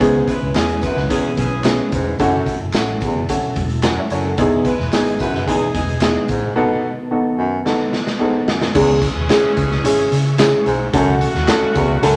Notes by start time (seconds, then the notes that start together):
Already playing: B4 D#5
0.00 C#2 G#2 E3 B3 C#4 E4 G#4 B4, kick, closed hi-hat, tambourine
0.27 G#3 E4 B4, kick, closed hi-hat, tambourine
0.42 C#2
0.54 E2 E3 B3 C#4 E4 G#4, snare, clap, closed hi-hat, tambourine
0.69 closed hi-hat
0.81 F#2 G#3 E4 B4, kick, closed hi-hat, tambourine
0.96 C#2, snare
1.09 E2 E3 B3 C#4 E4 G#4, kick, closed hi-hat, tambourine
1.24 muted fingered electric bass stroke
1.37 B1 E3 C#4 G#4, kick, closed hi-hat
1.64 B3 C#4 E4 G#4, snare, clap, closed hi-hat, tambourine
1.92 E1 G#2, kick, closed hi-hat, tambourine
2.19 F#1 F#2 F#3 A3 C#4 E4 F#4 A4, kick, closed hi-hat, tambourine
2.46 kick, closed hi-hat, tambourine
2.60 F#1
2.73 A1 A3 C#4 E4 F#4, snare, clap, closed hi-hat, tambourine
3.01 E2, kick, closed hi-hat, tambourine
3.15 F#1
3.29 A3 C#4 E4 F#4, kick, closed hi-hat
3.43 muted fingered electric bass stroke
3.56 E1, kick, closed hi-hat
3.70 closed hi-hat
3.82 F#2, snare, clap, closed hi-hat, tambourine
3.98 C#5 E5
4.10 F#1 F#2 A4 C#5, closed hi-hat, tambourine
4.25 F#4 A4
4.37 E1 E2 E3 B3 D#4 E4 G#4, kick, closed hi-hat, tambourine
4.65 G#3 E4 B4, kick, closed hi-hat, tambourine
4.79 E1, snare
4.92 G#1 E3 B3 D#4 E4 G#4, snare, clap, closed hi-hat, tambourine
5.06 closed hi-hat
5.19 F#2 G#3 E4 B4, kick, closed hi-hat, tambourine
5.33 F#1, snare
5.47 E2 E3 B3 D#4 E4 G#4, kick, closed hi-hat, tambourine
5.61 muted fingered electric bass stroke
5.75 E1 E3 D#4 G#4, kick, closed hi-hat
5.88 closed hi-hat
6.01 B3 D#4 E4 G#4, snare, clap, closed hi-hat, tambourine
6.28 A1 G#2, kick, closed hi-hat, tambourine
6.55 B2 D#3 B3 D#4 F#4 A4
7.11 B3 D#4 F#4 A4
7.38 F#2
7.65 B3 D#4 F#4 A4, snare
7.93 snare
8.07 snare
8.19 G#2 B3 D#4 F#4 A4
8.47 F#2, snare
8.62 snare
8.74 C#2 E2 E3 G#3 C#4 E4 G#4 E5 C#6, kick, crash, tambourine
9.02 kick, closed hi-hat, tambourine
9.15 D#2
9.29 G#3 C#4 E4 G#4, snare, clap, closed hi-hat, tambourine
9.43 muted fingered electric bass stroke
9.57 C#2, kick, closed hi-hat, tambourine
9.71 snare
9.84 G#1 G#3 C#4 E4 G#4, closed hi-hat, tambourine
10.12 C#3, closed hi-hat, tambourine
10.38 G#3 C#4 E4 G#4, snare, clap, closed hi-hat, tambourine
10.66 B1 G#2, closed hi-hat, tambourine
10.93 C#2 F#2 C#3 A3 C#4 F#4 A4 F#5, kick, closed hi-hat, tambourine
11.21 closed hi-hat, tambourine
11.35 D#2, snare
11.48 A3 C#4 F#4 A4, snare, clap, closed hi-hat, tambourine
11.62 muted fingered electric bass stroke
11.75 C#2 E2, kick, closed hi-hat, tambourine
12.02 C#2 F#2 A3 C#4 F#4 A4, closed hi-hat, tambourine